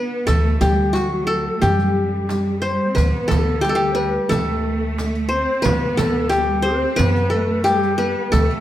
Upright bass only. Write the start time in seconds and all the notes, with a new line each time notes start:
0.28 D2
0.61 D2
1.62 F#2
2.97 D2
3.31 D2
4.31 D2
5.65 D2
5.98 D2
6.99 F#2
8.33 D2